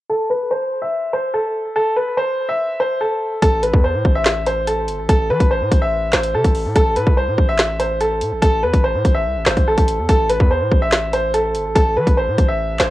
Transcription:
0.09 upright piano A4
0.30 upright piano B4
0.51 upright piano C5
0.82 upright piano E5
1.13 upright piano C5
1.34 upright piano A4
1.76 upright piano A4
1.96 upright piano B4
2.17 upright piano C5
2.49 upright piano E5
2.80 upright piano C5
3.01 upright piano A4
3.42 808-style bass A1, upright piano A4, kick, closed hi-hat
3.63 upright piano B4, closed hi-hat
3.73 808-style bass E2, kick
3.84 upright piano C5
3.94 808-style bass A2
4.05 808-style bass A1, kick
4.15 upright piano E5
4.25 snare, clap, closed hi-hat
4.46 upright piano C5, closed hi-hat
4.67 upright piano A4, closed hi-hat
4.88 808-style bass G1, closed hi-hat
4.99 808-style bass A1
5.09 808-style bass A1, upright piano A4, kick, closed hi-hat
5.30 808-style bass E3, upright piano B4
5.40 808-style bass A1, kick, closed hi-hat
5.51 upright piano C5
5.61 808-style bass A2
5.72 808-style bass A1, kick, closed hi-hat
5.82 upright piano E5
6.13 808-style bass A1, upright piano C5, snare, clap, closed hi-hat
6.23 closed hi-hat
6.34 808-style bass C3, upright piano A4
6.44 808-style bass A1, kick, closed hi-hat
6.55 open hi-hat
6.65 808-style bass A2
6.76 808-style bass A1, upright piano A4, kick, closed hi-hat
6.96 808-style bass A2, upright piano B4, closed hi-hat
7.07 808-style bass C2, kick
7.17 upright piano C5
7.28 808-style bass A2
7.38 808-style bass A1, kick
7.49 upright piano E5
7.59 snare, clap, closed hi-hat
7.80 upright piano C5, closed hi-hat
8.01 upright piano A4, closed hi-hat
8.21 808-style bass A2, closed hi-hat
8.32 808-style bass A1
8.42 808-style bass A1, upright piano A4, kick, closed hi-hat
8.63 808-style bass E2, upright piano B4
8.73 808-style bass A1, kick, closed hi-hat
8.84 upright piano C5
8.94 808-style bass A2
9.05 808-style bass A1, kick, closed hi-hat
9.15 upright piano E5
9.26 808-style bass C2
9.36 808-style bass A1
9.46 808-style bass G1, upright piano C5, cross-stick, snare, clap, closed hi-hat
9.57 808-style bass A1, kick, closed hi-hat
9.68 upright piano A4
9.78 808-style bass A1, kick, closed hi-hat
9.88 closed hi-hat
9.99 808-style bass E2
10.09 808-style bass A1, upright piano A4, kick, closed hi-hat
10.29 upright piano B4, closed hi-hat
10.40 808-style bass E2, kick
10.51 upright piano C5
10.61 808-style bass A2
10.71 808-style bass A1, kick
10.82 upright piano E5
10.92 snare, clap, closed hi-hat
11.13 upright piano C5, closed hi-hat
11.34 upright piano A4, closed hi-hat
11.55 808-style bass G1, closed hi-hat
11.65 808-style bass A1
11.75 808-style bass A1, upright piano A4, kick, closed hi-hat
11.96 808-style bass E3, upright piano B4
12.07 808-style bass A1, kick, closed hi-hat
12.17 upright piano C5
12.28 808-style bass A2
12.38 808-style bass A1, kick, closed hi-hat
12.48 upright piano E5
12.79 808-style bass A1, upright piano C5, snare, clap, closed hi-hat

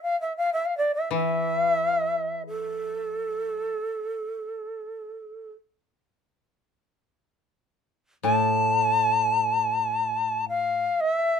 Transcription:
0.03 shakuhachi F5
0.21 shakuhachi E5
0.37 shakuhachi F5
0.53 shakuhachi E5
0.66 shakuhachi F5
0.78 shakuhachi D5
0.95 shakuhachi E5
1.11 koto E3, shakuhachi E5
2.48 shakuhachi A4
8.23 koto A2, shakuhachi A5
10.49 shakuhachi F5
11.00 shakuhachi D#5
11.11 shakuhachi E5

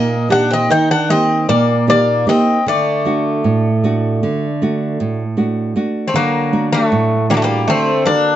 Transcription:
Already playing: nylon-string guitar A#2 A#3 D#4 G4, bouzouki A#3 D#5
0.28 nylon-string guitar A#3 D#4 G4, bouzouki D4 F#5
0.50 bouzouki C4 D#5
0.70 nylon-string guitar D#3, bouzouki D#4 G5
0.91 bouzouki D4 F#5
1.09 nylon-string guitar A#3 D#4 G4, bouzouki C4 D#5
1.49 nylon-string guitar A#2, bouzouki A#3 D5
1.87 nylon-string guitar A#3 D#4 G4, bouzouki A#3 D5
2.27 nylon-string guitar A#3 D#4 G4, bouzouki C4 D#5
2.66 nylon-string guitar D3, bouzouki A3 D5
3.05 nylon-string guitar A3 D4 F#4
3.44 nylon-string guitar A2
3.84 nylon-string guitar A3 D4 F#4
4.23 nylon-string guitar D3
4.62 nylon-string guitar A3 D4 F#4
5.00 nylon-string guitar A2
5.37 nylon-string guitar A3 D4 F#4
5.76 nylon-string guitar A3 D4 F#4
6.08 bouzouki A3 C4
6.14 nylon-string guitar D3, bouzouki F#3 A#3
6.53 nylon-string guitar A3 D4 F#4
6.72 bouzouki F#3 A3
6.92 nylon-string guitar A2
7.30 bouzouki G3 A#3, nylon-string guitar A3 D4 F#4
7.34 bouzouki F#3 A3
7.42 bouzouki G3 A#3
7.68 nylon-string guitar D3, bouzouki A3 C4
8.06 bouzouki A#3 D4, nylon-string guitar F#4 A4 D5

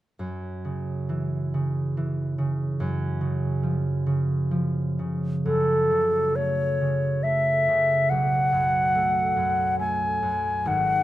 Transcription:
0.19 harp F#2
0.65 harp C#3
1.09 harp E3
1.54 harp C#3
1.97 harp E3
2.38 harp C#3
2.80 harp F#2
3.21 harp C#3
3.63 harp F3
4.06 harp C#3
4.51 harp F3
4.99 harp C#3
5.45 harp F#2, flute A4
5.91 harp C#3
6.36 harp A3, flute C#5
6.81 harp C#3
7.23 harp A3, flute E5
7.68 harp C#3
8.10 harp B1, flute F#5
8.52 harp F#2
8.95 harp A3
9.36 harp F#2
9.79 harp A3, flute G#5
10.22 harp F#2
10.65 harp G#1, flute F#5

